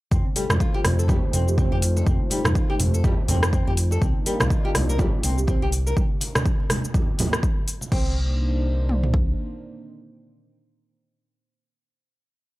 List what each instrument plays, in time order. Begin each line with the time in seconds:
0.11 analog synth bass F2, analog synth pad A3 D#4 F4 C5, nylon-string guitar C4, kick, high conga, cabasa
0.36 nylon-string guitar G3, marimba A4, open hi-hat, muted conga, cabasa
0.50 analog synth bass F2, cross-stick, high conga, low conga, cabasa
0.60 nylon-string guitar F4, kick, cabasa
0.74 marimba F4, nylon-string guitar G4, muted conga
0.84 analog synth bass F2, cross-stick, open hi-hat, high conga, cabasa
0.99 nylon-string guitar A4, cabasa
1.08 nylon-string guitar G3, kick, muted conga, high conga, low conga, cabasa
1.33 analog synth bass F2, nylon-string guitar C4, open hi-hat, high conga, cabasa
1.48 marimba G4, cabasa
1.58 nylon-string guitar C4, kick, muted conga, high conga, cabasa
1.72 analog synth bass F2, nylon-string guitar G4
1.82 marimba F4, open hi-hat, cabasa
1.96 nylon-string guitar A4, muted conga, cabasa
2.06 analog synth bass F2, nylon-string guitar C4, kick, high conga, cabasa
2.30 nylon-string guitar G3, marimba D#4, open hi-hat, muted conga, cabasa
2.44 analog synth bass F2, cross-stick, high conga, low conga, cabasa
2.55 nylon-string guitar F4, kick, cabasa
2.70 marimba D#4, nylon-string guitar G4, muted conga
2.80 analog synth bass F2, open hi-hat, high conga, cabasa
2.94 nylon-string guitar A4, cabasa
3.04 nylon-string guitar G3, kick, muted conga, low conga, cabasa
3.28 analog synth bass F2, nylon-string guitar C4, open hi-hat, high conga, low conga, cabasa
3.43 cross-stick, cabasa
3.53 nylon-string guitar C4, kick, muted conga, cabasa
3.67 analog synth bass F2, nylon-string guitar G4
3.77 open hi-hat, cabasa
3.91 nylon-string guitar A4, muted conga, cabasa
4.02 analog synth bass C2, analog synth pad A#3 D4 D#4, nylon-string guitar C4, kick, high conga, cabasa
4.26 nylon-string guitar G3, marimba A#4, open hi-hat, muted conga, cabasa
4.40 analog synth bass C2, cross-stick, high conga, low conga, cabasa
4.50 nylon-string guitar F4, kick, cabasa
4.64 marimba F4, nylon-string guitar G4, muted conga
4.75 analog synth bass C2, cross-stick, open hi-hat, high conga, cabasa
4.89 nylon-string guitar A#4, cabasa
4.98 nylon-string guitar G3, kick, muted conga, high conga, low conga, cabasa
5.23 analog synth bass C2, nylon-string guitar C4, open hi-hat, high conga, cabasa
5.38 marimba G4, cabasa
5.47 nylon-string guitar C4, kick, muted conga, high conga, cabasa
5.62 analog synth bass C2, nylon-string guitar G4
5.72 open hi-hat, cabasa
5.87 nylon-string guitar A#4, muted conga, cabasa
5.97 kick, high conga, cabasa
6.21 open hi-hat, muted conga, cabasa
6.35 cross-stick, high conga, low conga, cabasa
6.46 kick, cabasa
6.60 muted conga
6.70 cross-stick, open hi-hat, high conga, cabasa
6.85 cabasa
6.94 kick, muted conga, low conga, cabasa
7.18 open hi-hat, high conga, low conga, cabasa
7.33 cross-stick, cabasa
7.43 kick, muted conga, cabasa
7.68 open hi-hat, cabasa
7.81 muted conga, cabasa
7.92 analog synth bass C2, analog synth pad A#3 D4 D#4 C5, nylon-string guitar C4, kick, crash
8.89 mid tom
9.03 floor tom
9.14 kick